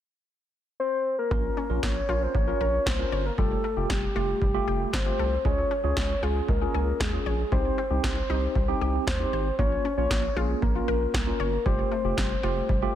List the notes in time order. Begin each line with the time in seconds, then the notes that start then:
0.80 C5
1.19 A#4
1.31 A#1 A#3 C#4 F4 A#4, kick
1.57 C#4
1.70 A#1 C#4 F4 A#4
1.83 A#1 A#3 C#5, kick, snare
2.09 A#1 C#4 F4 A#4
2.22 C5
2.35 A#1 A#3 C#5, kick
2.48 C#4 F4 A#4
2.60 A#1 A#4
2.86 C2 A#3 C5, kick, snare
2.99 C#4 F4 A#4
3.12 G1 C#5
3.26 A#4
3.38 F1 G3 A3 F4 G4 A4, kick
3.64 A3
3.77 F1 A3 F4 G4
3.90 F1 G3 G4, kick, snare
4.16 F1 A3 F4 G4
4.42 F1 G3, kick
4.54 A3 F4 G4
4.67 F1 G4
4.93 G1 G3 C5, kick, snare
5.06 A3 F4 G4
5.19 C2 A4
5.45 C#2 G#3 C#4 F4 G#4 C#5, kick
5.71 C#4
5.84 C#2 C#4 F4 G#4 C#5
5.97 C#2 G#3, kick, snare
6.22 C#2 C#4 F4 G#4
6.49 C#2 G#3 A#4, kick
6.61 C#4 F4 G#4
6.74 C#2 G#4
7.00 D#2 G#3 G#4, kick, snare
7.13 C#4 F4 G#4
7.26 A#1 C#5
7.52 C2 G3 C4 D#4 G4 C5, kick
7.78 C4
7.91 C2 C4 D#4 G4
8.04 C2 G3 C5, kick, snare
8.29 C2 C4 D#4 G4
8.55 C2 G3, kick
8.68 C4 D#4 G4
8.81 C2 G4
9.07 D#2 G3 C5, kick, snare
9.20 C4 D#4 G4
9.33 G#1 C5
9.59 A#1 A#3 C#4 F4 C#5, kick
9.85 C#4
9.97 A#1 A#3 C#4 F4 C#5
10.10 A#1 A#3, kick, snare
10.36 A#1 A#3 C#4 F4 G#4
10.62 A#1 A#3 A#4, kick
10.76 A#3 C#4 F4
10.88 A#1 A#4
11.14 C2 A#3 A#4, kick, snare
11.27 A#3 C#4 F4
11.40 G1 C#5
11.65 F1 G3 A3 F4 G4 C5, kick
11.92 A3
12.04 F1 A3 F4 G4
12.17 F1 G3 C5, kick, snare
12.43 F1 A3 F4 G4
12.69 F1 G3, kick
12.82 A3 F4 G4